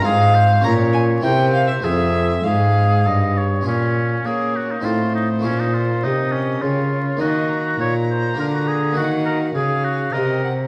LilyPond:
<<
  \new Staff \with { instrumentName = "Violin" } { \time 3/4 \key f \minor \tempo 4 = 101 f''4 bes''8 aes''8 g''8 f''16 e''16 | e''4 f''4. r8 | \key bes \minor r4 des''4 c''4~ | c''4 ees''4 des''8 des''8 |
ees''8 bes''2~ bes''8 | ges''4 f''4 ees''8 ges''8 | }
  \new Staff \with { instrumentName = "Oboe" } { \time 3/4 \key f \minor aes'8 c''8 des''4 c''4 | aes'4 aes'4 ees''8 des''8 | \key bes \minor des'4 aes'8 ges'16 ees'16 f'8 ees'8 | des'16 ees'16 f'8 ees'8 des'8 f'4 |
ges'4 des''8 c''8 bes'16 ges'16 aes'8 | ges'8 bes'8 aes'8 ges'8 bes'8. r16 | }
  \new Staff \with { instrumentName = "Harpsichord" } { \time 3/4 \key f \minor <c' f' c''>4 <des' f' bes'>4 <c' e' bes'>4 | <c' f' aes'>2. | \key bes \minor <des' f'>2 <c' ees' f'>4 | <bes des' f'>2. |
<bes ees'>2 <bes f'>4 | <bes ges'>2. | }
  \new Staff \with { instrumentName = "Harpsichord" } { \clef bass \time 3/4 \key f \minor aes,4 bes,4 c4 | f,4 aes,4 g,4 | \key bes \minor bes,4 bes4 a,4 | bes,4 c4 des4 |
ees4 bes,4 d4 | ees4 des4 c4 | }
  \new Staff \with { instrumentName = "Cello" } { \clef bass \time 3/4 \key f \minor aes,4 bes,4 c4 | f,4 aes,4 g,4 | \key bes \minor bes,4 bes4 a,4 | bes,4 c4 des4 |
ees4 bes,4 d4 | ees4 des4 c4 | }
>>